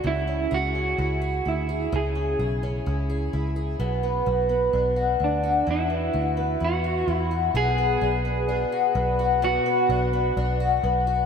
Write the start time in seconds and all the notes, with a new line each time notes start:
Already playing: A3 D4 F#4
0.04 C#2 C#3 E4
0.27 C#4
0.51 C#2 F#4 G#4
0.75 C#4
0.98 C#2 E4
1.22 G#4
1.45 D2 E4
1.69 G#4
1.92 C#2 C#3 G#4
2.15 C#4
2.39 B1 G#4
2.63 C#4
2.86 C#2 E4
3.10 G#4
3.33 C#2 E4
3.56 G#4
3.79 B1 B2
4.03 B3
4.26 B1 F#4
4.49 B3
4.73 B1 D4
4.96 F#4
5.20 D2 D4
5.24 D4
5.43 F#4
5.67 E2 E3
5.71 E4
5.90 B3
6.13 D2 F#4
6.37 B3
6.60 E2 E4
6.64 F#4
6.84 F#4
7.08 E2 E4
7.12 E4
7.31 F#4
7.54 B1 B2 F#4 G#4
7.78 B3
8.01 B1 D4
8.25 B3
8.49 D4
8.72 F#4
8.95 B1 B3
9.19 F#4
9.42 B2 F#4
9.66 B3
9.89 B1 D4
10.13 B3
10.37 B1 D4
10.60 F#4
10.84 B1 B3
11.07 F#4